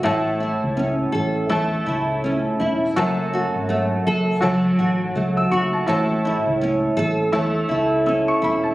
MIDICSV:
0, 0, Header, 1, 4, 480
1, 0, Start_track
1, 0, Key_signature, 3, "major"
1, 0, Tempo, 729040
1, 26, Time_signature, 4, 2, 24, 8
1, 5758, End_track
2, 0, Start_track
2, 0, Title_t, "Upright piano"
2, 0, Program_c, 0, 0
2, 0, Control_c, 0, 64, 127
2, 24, Note_on_c, 0, 64, 71
2, 29, Note_on_c, 0, 69, 69
2, 34, Control_c, 0, 64, 0
2, 34, Note_on_c, 0, 73, 68
2, 37, Note_on_c, 0, 81, 74
2, 149, Control_c, 0, 64, 127
2, 671, Note_off_c, 0, 64, 0
2, 674, Note_off_c, 0, 69, 0
2, 676, Note_off_c, 0, 73, 0
2, 678, Note_off_c, 0, 81, 0
2, 986, Note_on_c, 0, 64, 74
2, 989, Note_on_c, 0, 69, 71
2, 993, Note_on_c, 0, 73, 73
2, 997, Note_on_c, 0, 81, 89
2, 1632, Note_off_c, 0, 64, 0
2, 1634, Note_off_c, 0, 69, 0
2, 1636, Note_off_c, 0, 73, 0
2, 1638, Note_off_c, 0, 81, 0
2, 1950, Note_on_c, 0, 66, 76
2, 1954, Note_on_c, 0, 69, 68
2, 1957, Control_c, 0, 64, 0
2, 1958, Note_on_c, 0, 73, 68
2, 1961, Note_on_c, 0, 81, 79
2, 2085, Control_c, 0, 64, 127
2, 2595, Note_off_c, 0, 66, 0
2, 2597, Note_off_c, 0, 69, 0
2, 2599, Note_off_c, 0, 73, 0
2, 2600, Note_off_c, 0, 81, 0
2, 2901, Note_on_c, 0, 66, 79
2, 2907, Note_on_c, 0, 69, 72
2, 2911, Note_on_c, 0, 73, 71
2, 2916, Note_on_c, 0, 81, 80
2, 3392, Note_off_c, 0, 81, 0
2, 3537, Note_on_c, 0, 88, 69
2, 3550, Note_off_c, 0, 66, 0
2, 3553, Note_off_c, 0, 69, 0
2, 3555, Note_off_c, 0, 73, 0
2, 3626, Note_off_c, 0, 88, 0
2, 3631, Note_on_c, 0, 85, 67
2, 3766, Note_off_c, 0, 85, 0
2, 3773, Note_on_c, 0, 81, 58
2, 3861, Note_on_c, 0, 64, 72
2, 3863, Note_off_c, 0, 81, 0
2, 3865, Note_on_c, 0, 69, 65
2, 3871, Note_on_c, 0, 73, 70
2, 3873, Note_on_c, 0, 81, 74
2, 3875, Control_c, 0, 64, 0
2, 3980, Control_c, 0, 64, 127
2, 4510, Note_off_c, 0, 64, 0
2, 4512, Note_off_c, 0, 69, 0
2, 4515, Note_off_c, 0, 73, 0
2, 4516, Note_off_c, 0, 81, 0
2, 4822, Note_on_c, 0, 64, 79
2, 4828, Note_on_c, 0, 69, 67
2, 4833, Note_on_c, 0, 73, 64
2, 4836, Note_on_c, 0, 81, 85
2, 5311, Note_on_c, 0, 88, 53
2, 5312, Note_off_c, 0, 81, 0
2, 5446, Note_off_c, 0, 88, 0
2, 5453, Note_on_c, 0, 85, 72
2, 5470, Note_off_c, 0, 64, 0
2, 5473, Note_off_c, 0, 69, 0
2, 5475, Note_off_c, 0, 73, 0
2, 5543, Note_off_c, 0, 85, 0
2, 5554, Note_on_c, 0, 83, 62
2, 5685, Note_on_c, 0, 81, 50
2, 5688, Note_off_c, 0, 83, 0
2, 5758, Note_off_c, 0, 81, 0
2, 5758, End_track
3, 0, Start_track
3, 0, Title_t, "Nylon-string guitar"
3, 0, Program_c, 1, 24
3, 0, Note_on_c, 1, 54, 60
3, 0, Note_on_c, 1, 57, 55
3, 0, Note_on_c, 1, 66, 55
3, 0, Note_on_c, 1, 69, 58
3, 20, Note_on_c, 1, 45, 75
3, 83, Note_off_c, 1, 66, 0
3, 84, Note_off_c, 1, 54, 0
3, 266, Note_on_c, 1, 64, 50
3, 503, Note_off_c, 1, 57, 0
3, 506, Note_on_c, 1, 61, 57
3, 737, Note_off_c, 1, 69, 0
3, 739, Note_on_c, 1, 69, 62
3, 984, Note_on_c, 1, 57, 64
3, 1219, Note_off_c, 1, 64, 0
3, 1226, Note_on_c, 1, 64, 55
3, 1471, Note_off_c, 1, 61, 0
3, 1474, Note_on_c, 1, 61, 50
3, 1701, Note_off_c, 1, 64, 0
3, 1709, Note_on_c, 1, 64, 50
3, 1945, Note_off_c, 1, 45, 0
3, 1952, Note_on_c, 1, 42, 80
3, 2006, Note_off_c, 1, 64, 0
3, 2195, Note_on_c, 1, 66, 50
3, 2426, Note_off_c, 1, 61, 0
3, 2429, Note_off_c, 1, 57, 0
3, 2429, Note_on_c, 1, 57, 62
3, 2675, Note_off_c, 1, 69, 0
3, 2677, Note_on_c, 1, 69, 65
3, 2909, Note_on_c, 1, 54, 64
3, 3144, Note_off_c, 1, 66, 0
3, 3152, Note_on_c, 1, 66, 57
3, 3390, Note_off_c, 1, 57, 0
3, 3393, Note_on_c, 1, 57, 55
3, 3624, Note_off_c, 1, 66, 0
3, 3632, Note_on_c, 1, 66, 59
3, 3865, Note_off_c, 1, 42, 0
3, 3868, Note_on_c, 1, 45, 73
3, 3926, Note_off_c, 1, 54, 0
3, 3927, Note_off_c, 1, 66, 0
3, 4115, Note_on_c, 1, 64, 52
3, 4352, Note_off_c, 1, 57, 0
3, 4355, Note_on_c, 1, 61, 53
3, 4585, Note_off_c, 1, 69, 0
3, 4587, Note_on_c, 1, 69, 66
3, 4824, Note_on_c, 1, 57, 65
3, 5053, Note_off_c, 1, 64, 0
3, 5061, Note_on_c, 1, 64, 54
3, 5305, Note_off_c, 1, 61, 0
3, 5307, Note_on_c, 1, 61, 50
3, 5534, Note_off_c, 1, 64, 0
3, 5542, Note_on_c, 1, 64, 55
3, 5758, Note_off_c, 1, 45, 0
3, 5758, Note_off_c, 1, 57, 0
3, 5758, Note_off_c, 1, 61, 0
3, 5758, Note_off_c, 1, 64, 0
3, 5758, Note_off_c, 1, 69, 0
3, 5758, End_track
4, 0, Start_track
4, 0, Title_t, "Fingered electric bass"
4, 0, Program_c, 2, 33
4, 31, Note_on_c, 2, 33, 97
4, 344, Note_off_c, 2, 33, 0
4, 420, Note_on_c, 2, 37, 83
4, 692, Note_off_c, 2, 37, 0
4, 755, Note_on_c, 2, 33, 80
4, 949, Note_off_c, 2, 33, 0
4, 992, Note_on_c, 2, 40, 90
4, 1187, Note_off_c, 2, 40, 0
4, 1233, Note_on_c, 2, 37, 73
4, 1624, Note_off_c, 2, 37, 0
4, 1714, Note_on_c, 2, 28, 69
4, 1909, Note_off_c, 2, 28, 0
4, 1954, Note_on_c, 2, 30, 99
4, 2266, Note_off_c, 2, 30, 0
4, 2341, Note_on_c, 2, 32, 84
4, 2613, Note_off_c, 2, 32, 0
4, 2674, Note_on_c, 2, 30, 87
4, 2868, Note_off_c, 2, 30, 0
4, 2914, Note_on_c, 2, 37, 84
4, 3108, Note_off_c, 2, 37, 0
4, 3152, Note_on_c, 2, 33, 79
4, 3347, Note_off_c, 2, 33, 0
4, 3395, Note_on_c, 2, 37, 88
4, 3589, Note_off_c, 2, 37, 0
4, 3632, Note_on_c, 2, 30, 74
4, 3827, Note_off_c, 2, 30, 0
4, 3869, Note_on_c, 2, 33, 106
4, 4184, Note_off_c, 2, 33, 0
4, 4260, Note_on_c, 2, 37, 86
4, 4532, Note_off_c, 2, 37, 0
4, 4589, Note_on_c, 2, 33, 87
4, 4785, Note_off_c, 2, 33, 0
4, 4830, Note_on_c, 2, 40, 93
4, 5026, Note_off_c, 2, 40, 0
4, 5071, Note_on_c, 2, 37, 76
4, 5463, Note_off_c, 2, 37, 0
4, 5551, Note_on_c, 2, 28, 69
4, 5746, Note_off_c, 2, 28, 0
4, 5758, End_track
0, 0, End_of_file